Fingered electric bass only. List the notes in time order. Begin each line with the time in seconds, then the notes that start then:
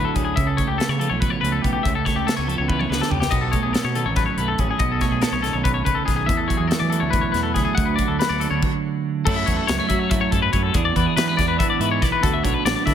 0.16 D2
0.37 C#2
0.68 C#2
0.89 C#3
1.10 B1
1.43 C#2
1.64 B1
1.85 C#2
2.15 C#2
2.38 C#2
2.59 C#2
2.90 C#2
3.11 C#2
3.32 B1
3.63 B1
3.84 B2
4.05 A1
4.37 B1
4.59 A1
4.80 B1
5.10 B1
5.32 B1
5.54 B1
5.86 B1
6.08 B1
6.29 E2
6.60 E2
6.81 E3
7.02 D2
7.33 E2
7.56 D2
7.78 D2
8.09 D2
8.30 D2
8.51 D2
9.26 F#2
9.48 E2
9.69 C#2
9.90 F#3
10.32 F#2
10.53 F#2
10.74 E2
10.96 E2
11.17 E3
11.39 E2
11.79 G#2
12.02 B1
12.23 D2
12.44 B1
12.65 A1
12.86 D3